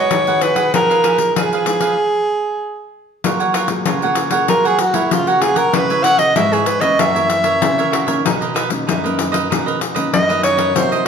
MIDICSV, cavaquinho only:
0, 0, Header, 1, 3, 480
1, 0, Start_track
1, 0, Tempo, 626305
1, 563, Time_signature, 4, 2, 24, 8
1, 8491, End_track
2, 0, Start_track
2, 0, Title_t, "Cavaquinho"
2, 0, Program_c, 0, 24
2, 0, Note_on_c, 0, 68, 54
2, 0, Note_on_c, 0, 71, 56
2, 0, Note_on_c, 0, 78, 59
2, 185, Note_off_c, 0, 78, 0
2, 188, Note_off_c, 0, 71, 0
2, 191, Note_off_c, 0, 68, 0
2, 212, Note_on_c, 0, 78, 70
2, 219, Note_on_c, 0, 71, 63
2, 222, Note_on_c, 0, 68, 53
2, 310, Note_off_c, 0, 68, 0
2, 313, Note_off_c, 0, 71, 0
2, 314, Note_on_c, 0, 66, 44
2, 318, Note_off_c, 0, 78, 0
2, 319, Note_on_c, 0, 68, 50
2, 322, Note_on_c, 0, 71, 54
2, 329, Note_on_c, 0, 78, 54
2, 417, Note_off_c, 0, 78, 0
2, 422, Note_off_c, 0, 71, 0
2, 426, Note_off_c, 0, 68, 0
2, 426, Note_on_c, 0, 78, 65
2, 429, Note_off_c, 0, 66, 0
2, 431, Note_on_c, 0, 71, 62
2, 435, Note_on_c, 0, 68, 58
2, 545, Note_off_c, 0, 78, 0
2, 547, Note_off_c, 0, 71, 0
2, 549, Note_off_c, 0, 68, 0
2, 564, Note_on_c, 0, 63, 50
2, 569, Note_on_c, 0, 68, 53
2, 572, Note_on_c, 0, 71, 55
2, 574, Note_on_c, 0, 77, 55
2, 674, Note_off_c, 0, 63, 0
2, 676, Note_off_c, 0, 68, 0
2, 678, Note_off_c, 0, 71, 0
2, 679, Note_off_c, 0, 77, 0
2, 687, Note_on_c, 0, 77, 64
2, 695, Note_on_c, 0, 71, 59
2, 699, Note_on_c, 0, 68, 57
2, 789, Note_off_c, 0, 68, 0
2, 791, Note_off_c, 0, 71, 0
2, 793, Note_on_c, 0, 63, 73
2, 795, Note_off_c, 0, 77, 0
2, 798, Note_on_c, 0, 68, 74
2, 800, Note_on_c, 0, 71, 78
2, 804, Note_on_c, 0, 77, 78
2, 906, Note_off_c, 0, 63, 0
2, 907, Note_off_c, 0, 68, 0
2, 908, Note_off_c, 0, 71, 0
2, 910, Note_off_c, 0, 77, 0
2, 1051, Note_on_c, 0, 63, 49
2, 1055, Note_on_c, 0, 68, 52
2, 1058, Note_on_c, 0, 71, 52
2, 1061, Note_on_c, 0, 77, 51
2, 1157, Note_off_c, 0, 63, 0
2, 1159, Note_off_c, 0, 68, 0
2, 1161, Note_off_c, 0, 71, 0
2, 1162, Note_off_c, 0, 77, 0
2, 1173, Note_on_c, 0, 77, 61
2, 1180, Note_on_c, 0, 71, 61
2, 1183, Note_on_c, 0, 68, 54
2, 1379, Note_off_c, 0, 77, 0
2, 1385, Note_off_c, 0, 71, 0
2, 1389, Note_on_c, 0, 77, 62
2, 1390, Note_off_c, 0, 68, 0
2, 1395, Note_on_c, 0, 71, 62
2, 1400, Note_on_c, 0, 68, 54
2, 1506, Note_off_c, 0, 77, 0
2, 1509, Note_off_c, 0, 71, 0
2, 1511, Note_off_c, 0, 68, 0
2, 2484, Note_on_c, 0, 65, 50
2, 2488, Note_on_c, 0, 70, 54
2, 2491, Note_on_c, 0, 73, 57
2, 2496, Note_on_c, 0, 78, 59
2, 2593, Note_off_c, 0, 65, 0
2, 2594, Note_off_c, 0, 78, 0
2, 2596, Note_off_c, 0, 70, 0
2, 2597, Note_off_c, 0, 73, 0
2, 2604, Note_on_c, 0, 78, 66
2, 2611, Note_on_c, 0, 73, 62
2, 2616, Note_on_c, 0, 70, 57
2, 2709, Note_off_c, 0, 70, 0
2, 2711, Note_off_c, 0, 73, 0
2, 2711, Note_on_c, 0, 65, 78
2, 2713, Note_off_c, 0, 78, 0
2, 2718, Note_on_c, 0, 70, 74
2, 2720, Note_on_c, 0, 73, 77
2, 2722, Note_on_c, 0, 78, 74
2, 2820, Note_off_c, 0, 65, 0
2, 2823, Note_off_c, 0, 70, 0
2, 2825, Note_off_c, 0, 73, 0
2, 2826, Note_off_c, 0, 78, 0
2, 2962, Note_on_c, 0, 65, 47
2, 2966, Note_on_c, 0, 70, 49
2, 2971, Note_on_c, 0, 73, 54
2, 2975, Note_on_c, 0, 78, 50
2, 3072, Note_off_c, 0, 65, 0
2, 3074, Note_off_c, 0, 70, 0
2, 3077, Note_off_c, 0, 73, 0
2, 3079, Note_off_c, 0, 78, 0
2, 3090, Note_on_c, 0, 78, 70
2, 3096, Note_on_c, 0, 73, 62
2, 3100, Note_on_c, 0, 70, 55
2, 3298, Note_off_c, 0, 78, 0
2, 3305, Note_off_c, 0, 73, 0
2, 3307, Note_on_c, 0, 78, 69
2, 3309, Note_off_c, 0, 70, 0
2, 3314, Note_on_c, 0, 73, 64
2, 3318, Note_on_c, 0, 70, 58
2, 3425, Note_off_c, 0, 78, 0
2, 3428, Note_off_c, 0, 73, 0
2, 3430, Note_off_c, 0, 70, 0
2, 3441, Note_on_c, 0, 65, 50
2, 3447, Note_on_c, 0, 70, 55
2, 3448, Note_on_c, 0, 73, 53
2, 3452, Note_on_c, 0, 78, 54
2, 3552, Note_off_c, 0, 65, 0
2, 3553, Note_off_c, 0, 78, 0
2, 3555, Note_off_c, 0, 70, 0
2, 3555, Note_off_c, 0, 73, 0
2, 3562, Note_on_c, 0, 78, 70
2, 3571, Note_on_c, 0, 73, 65
2, 3575, Note_on_c, 0, 70, 55
2, 3667, Note_off_c, 0, 70, 0
2, 3668, Note_off_c, 0, 73, 0
2, 3668, Note_off_c, 0, 78, 0
2, 3781, Note_on_c, 0, 78, 62
2, 3787, Note_on_c, 0, 73, 60
2, 3792, Note_on_c, 0, 70, 55
2, 4022, Note_off_c, 0, 78, 0
2, 4025, Note_off_c, 0, 73, 0
2, 4027, Note_off_c, 0, 70, 0
2, 4043, Note_on_c, 0, 78, 73
2, 4050, Note_on_c, 0, 73, 63
2, 4053, Note_on_c, 0, 70, 61
2, 4146, Note_off_c, 0, 70, 0
2, 4149, Note_off_c, 0, 73, 0
2, 4150, Note_off_c, 0, 78, 0
2, 4151, Note_on_c, 0, 65, 50
2, 4155, Note_on_c, 0, 70, 48
2, 4158, Note_on_c, 0, 73, 51
2, 4159, Note_on_c, 0, 78, 56
2, 4247, Note_off_c, 0, 78, 0
2, 4252, Note_off_c, 0, 73, 0
2, 4256, Note_on_c, 0, 78, 67
2, 4258, Note_off_c, 0, 70, 0
2, 4261, Note_on_c, 0, 73, 60
2, 4266, Note_off_c, 0, 65, 0
2, 4267, Note_on_c, 0, 70, 55
2, 4379, Note_off_c, 0, 78, 0
2, 4382, Note_off_c, 0, 73, 0
2, 4384, Note_off_c, 0, 70, 0
2, 4392, Note_on_c, 0, 64, 50
2, 4395, Note_on_c, 0, 71, 49
2, 4400, Note_on_c, 0, 73, 52
2, 4401, Note_on_c, 0, 76, 53
2, 4507, Note_off_c, 0, 64, 0
2, 4508, Note_off_c, 0, 76, 0
2, 4509, Note_off_c, 0, 71, 0
2, 4511, Note_off_c, 0, 73, 0
2, 4518, Note_on_c, 0, 76, 65
2, 4524, Note_on_c, 0, 73, 68
2, 4529, Note_on_c, 0, 71, 58
2, 4622, Note_off_c, 0, 71, 0
2, 4624, Note_off_c, 0, 73, 0
2, 4626, Note_on_c, 0, 64, 66
2, 4627, Note_off_c, 0, 76, 0
2, 4631, Note_on_c, 0, 71, 77
2, 4633, Note_on_c, 0, 73, 81
2, 4636, Note_on_c, 0, 76, 81
2, 4730, Note_off_c, 0, 64, 0
2, 4731, Note_off_c, 0, 71, 0
2, 4734, Note_off_c, 0, 73, 0
2, 4735, Note_off_c, 0, 76, 0
2, 4873, Note_on_c, 0, 64, 50
2, 4877, Note_on_c, 0, 71, 50
2, 4880, Note_on_c, 0, 73, 59
2, 4883, Note_on_c, 0, 76, 58
2, 4988, Note_off_c, 0, 64, 0
2, 4990, Note_off_c, 0, 71, 0
2, 4991, Note_off_c, 0, 73, 0
2, 4991, Note_off_c, 0, 76, 0
2, 5000, Note_on_c, 0, 76, 71
2, 5007, Note_on_c, 0, 73, 67
2, 5010, Note_on_c, 0, 71, 57
2, 5211, Note_off_c, 0, 76, 0
2, 5218, Note_off_c, 0, 73, 0
2, 5220, Note_on_c, 0, 76, 72
2, 5223, Note_off_c, 0, 71, 0
2, 5227, Note_on_c, 0, 73, 65
2, 5233, Note_on_c, 0, 71, 59
2, 5341, Note_off_c, 0, 76, 0
2, 5345, Note_off_c, 0, 73, 0
2, 5347, Note_off_c, 0, 71, 0
2, 5357, Note_on_c, 0, 66, 50
2, 5360, Note_on_c, 0, 70, 58
2, 5365, Note_on_c, 0, 73, 59
2, 5368, Note_on_c, 0, 76, 56
2, 5469, Note_off_c, 0, 76, 0
2, 5470, Note_off_c, 0, 66, 0
2, 5471, Note_off_c, 0, 70, 0
2, 5474, Note_off_c, 0, 73, 0
2, 5478, Note_on_c, 0, 76, 70
2, 5485, Note_on_c, 0, 73, 68
2, 5490, Note_on_c, 0, 70, 57
2, 5581, Note_off_c, 0, 70, 0
2, 5582, Note_off_c, 0, 73, 0
2, 5584, Note_off_c, 0, 76, 0
2, 5699, Note_on_c, 0, 76, 68
2, 5706, Note_on_c, 0, 73, 64
2, 5712, Note_on_c, 0, 70, 57
2, 5940, Note_off_c, 0, 76, 0
2, 5944, Note_off_c, 0, 73, 0
2, 5947, Note_off_c, 0, 70, 0
2, 5964, Note_on_c, 0, 76, 70
2, 5969, Note_on_c, 0, 73, 62
2, 5975, Note_on_c, 0, 70, 63
2, 6063, Note_off_c, 0, 70, 0
2, 6066, Note_on_c, 0, 66, 49
2, 6068, Note_off_c, 0, 73, 0
2, 6068, Note_off_c, 0, 76, 0
2, 6072, Note_on_c, 0, 70, 53
2, 6077, Note_on_c, 0, 76, 53
2, 6078, Note_on_c, 0, 73, 54
2, 6172, Note_off_c, 0, 76, 0
2, 6180, Note_off_c, 0, 73, 0
2, 6182, Note_on_c, 0, 76, 67
2, 6184, Note_off_c, 0, 66, 0
2, 6184, Note_off_c, 0, 70, 0
2, 6189, Note_on_c, 0, 73, 59
2, 6193, Note_on_c, 0, 70, 60
2, 6302, Note_off_c, 0, 76, 0
2, 6305, Note_off_c, 0, 73, 0
2, 6308, Note_off_c, 0, 70, 0
2, 6324, Note_on_c, 0, 63, 55
2, 6327, Note_on_c, 0, 70, 55
2, 6330, Note_on_c, 0, 71, 61
2, 6332, Note_on_c, 0, 75, 56
2, 6433, Note_off_c, 0, 63, 0
2, 6435, Note_off_c, 0, 70, 0
2, 6436, Note_off_c, 0, 71, 0
2, 6437, Note_off_c, 0, 75, 0
2, 6446, Note_on_c, 0, 75, 70
2, 6452, Note_on_c, 0, 71, 67
2, 6458, Note_on_c, 0, 70, 57
2, 6545, Note_off_c, 0, 70, 0
2, 6549, Note_off_c, 0, 71, 0
2, 6549, Note_on_c, 0, 63, 74
2, 6550, Note_off_c, 0, 75, 0
2, 6554, Note_on_c, 0, 70, 74
2, 6558, Note_on_c, 0, 71, 85
2, 6559, Note_on_c, 0, 75, 83
2, 6656, Note_off_c, 0, 63, 0
2, 6659, Note_off_c, 0, 70, 0
2, 6662, Note_off_c, 0, 71, 0
2, 6662, Note_off_c, 0, 75, 0
2, 6798, Note_on_c, 0, 63, 54
2, 6802, Note_on_c, 0, 70, 52
2, 6806, Note_on_c, 0, 71, 56
2, 6809, Note_on_c, 0, 75, 53
2, 6910, Note_off_c, 0, 63, 0
2, 6912, Note_off_c, 0, 70, 0
2, 6914, Note_off_c, 0, 71, 0
2, 6915, Note_off_c, 0, 75, 0
2, 6926, Note_on_c, 0, 75, 67
2, 6931, Note_on_c, 0, 71, 59
2, 6939, Note_on_c, 0, 70, 60
2, 7133, Note_off_c, 0, 75, 0
2, 7140, Note_off_c, 0, 71, 0
2, 7142, Note_on_c, 0, 75, 77
2, 7145, Note_off_c, 0, 70, 0
2, 7149, Note_on_c, 0, 71, 61
2, 7154, Note_on_c, 0, 70, 61
2, 7262, Note_off_c, 0, 75, 0
2, 7265, Note_off_c, 0, 71, 0
2, 7268, Note_off_c, 0, 70, 0
2, 7280, Note_on_c, 0, 63, 54
2, 7284, Note_on_c, 0, 70, 52
2, 7289, Note_on_c, 0, 71, 55
2, 7291, Note_on_c, 0, 75, 62
2, 7391, Note_off_c, 0, 63, 0
2, 7393, Note_off_c, 0, 70, 0
2, 7395, Note_off_c, 0, 75, 0
2, 7396, Note_off_c, 0, 71, 0
2, 7404, Note_on_c, 0, 75, 69
2, 7410, Note_on_c, 0, 71, 61
2, 7417, Note_on_c, 0, 70, 57
2, 7509, Note_off_c, 0, 70, 0
2, 7510, Note_off_c, 0, 71, 0
2, 7511, Note_off_c, 0, 75, 0
2, 7623, Note_on_c, 0, 75, 64
2, 7630, Note_on_c, 0, 71, 66
2, 7633, Note_on_c, 0, 70, 52
2, 7862, Note_off_c, 0, 75, 0
2, 7866, Note_off_c, 0, 71, 0
2, 7868, Note_off_c, 0, 70, 0
2, 7885, Note_on_c, 0, 75, 78
2, 7890, Note_on_c, 0, 71, 68
2, 7895, Note_on_c, 0, 70, 60
2, 7983, Note_off_c, 0, 70, 0
2, 7987, Note_off_c, 0, 71, 0
2, 7988, Note_on_c, 0, 63, 52
2, 7991, Note_off_c, 0, 75, 0
2, 7992, Note_on_c, 0, 70, 53
2, 7997, Note_on_c, 0, 71, 54
2, 8000, Note_on_c, 0, 75, 56
2, 8094, Note_off_c, 0, 75, 0
2, 8100, Note_off_c, 0, 71, 0
2, 8103, Note_on_c, 0, 75, 68
2, 8104, Note_off_c, 0, 70, 0
2, 8105, Note_off_c, 0, 63, 0
2, 8109, Note_on_c, 0, 71, 66
2, 8113, Note_on_c, 0, 70, 54
2, 8223, Note_off_c, 0, 75, 0
2, 8226, Note_off_c, 0, 71, 0
2, 8228, Note_off_c, 0, 70, 0
2, 8236, Note_on_c, 0, 66, 52
2, 8240, Note_on_c, 0, 70, 48
2, 8245, Note_on_c, 0, 72, 57
2, 8248, Note_on_c, 0, 75, 53
2, 8349, Note_off_c, 0, 66, 0
2, 8351, Note_off_c, 0, 70, 0
2, 8354, Note_off_c, 0, 72, 0
2, 8355, Note_off_c, 0, 75, 0
2, 8367, Note_on_c, 0, 75, 75
2, 8373, Note_on_c, 0, 72, 62
2, 8379, Note_on_c, 0, 70, 57
2, 8466, Note_off_c, 0, 70, 0
2, 8470, Note_off_c, 0, 72, 0
2, 8475, Note_off_c, 0, 75, 0
2, 8491, End_track
3, 0, Start_track
3, 0, Title_t, "Muted cavaquinho strokes"
3, 915, Note_on_c, 9, 29, 38
3, 991, Note_off_c, 9, 29, 0
3, 2829, Note_on_c, 9, 29, 39
3, 2906, Note_off_c, 9, 29, 0
3, 3672, Note_on_c, 9, 29, 42
3, 3749, Note_off_c, 9, 29, 0
3, 4739, Note_on_c, 9, 29, 36
3, 4816, Note_off_c, 9, 29, 0
3, 5590, Note_on_c, 9, 29, 38
3, 5666, Note_off_c, 9, 29, 0
3, 6665, Note_on_c, 9, 29, 39
3, 6741, Note_off_c, 9, 29, 0
3, 7517, Note_on_c, 9, 29, 42
3, 7594, Note_off_c, 9, 29, 0
3, 8491, End_track
0, 0, End_of_file